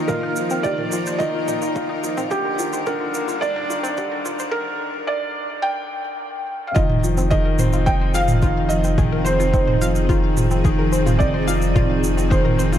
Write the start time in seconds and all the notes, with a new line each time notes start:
Already playing: D#3 F3 A#3 D#4 F4 A#4 D#5
0.08 F4 A#4, kick, mid tom, shaker
0.23 D#4
0.36 F3 F4, shaker
0.50 C4, shaker
0.63 D#3 G4 D5, kick, shaker
0.78 A#4, mid tom
0.92 F3 F4, shaker
1.06 C5, shaker
1.18 D#3 F4 D#5, kick, shaker
1.35 F4
1.48 D#4, mid tom, shaker
1.62 F4, shaker
1.75 F4, kick, shaker
1.89 D#4
2.03 F3 F4, shaker
2.17 C4, mid tom, shaker
2.30 D3 G3 D4 G4, kick, shaker
2.45 A#4
2.59 D#3 F4, shaker
2.73 C5, shaker
2.87 D3 F4 A#4, kick, mid tom, shaker
3.00 F4
3.14 A#3, shaker
3.28 F4, shaker
3.41 D4 D5, kick, shaker
3.56 D#4, mid tom
3.70 D#3 F4, shaker
3.83 C4, shaker
3.97 D3 G4, kick, shaker
4.12 A#4
4.25 D#3 F4, mid tom, shaker
4.39 C5, shaker
4.51 A#4
5.07 D5
5.62 G5
6.67 F5
6.74 F1 D#3 F3 C4 D#4 F4 G#4 D#5, kick, shaker
6.90 mid tom
7.03 F3, shaker
7.17 C4, shaker
7.30 D#3 G#4 D#5, kick, shaker
7.45 A#4
7.59 C4 C5, mid tom, shaker
7.73 F4, shaker
7.86 C4 D#4 G5, kick, shaker
8.01 C5
8.14 F3 F5, shaker
8.28 mid tom, shaker
8.42 D#3 F4, kick, shaker
8.69 F3 D#5, shaker
8.84 C4, shaker
8.98 D#3 G#4, kick, mid tom, shaker
9.12 A#4
9.24 C4 C5, shaker
9.40 F4, shaker
9.52 C4 D#4 C5, kick, shaker
9.67 C5, mid tom
9.81 F3 F5, shaker
9.95 shaker
10.09 D#3 F4, kick, shaker
10.37 F3, mid tom, shaker
10.51 C4, shaker
10.64 D#3 G#4, kick, shaker
10.79 A#4
10.92 C4 C5, shaker
11.06 F4, mid tom, shaker
11.19 C4 D#4 D5, kick, shaker
11.34 C5
11.48 F3 F5, shaker
11.62 shaker
11.76 D#3 F4, kick, mid tom, shaker
12.04 F3, shaker
12.17 C4, shaker
12.30 D#3 G#4 C5, kick, shaker
12.45 A#4, mid tom
12.59 C4 C5, shaker
12.73 F4, shaker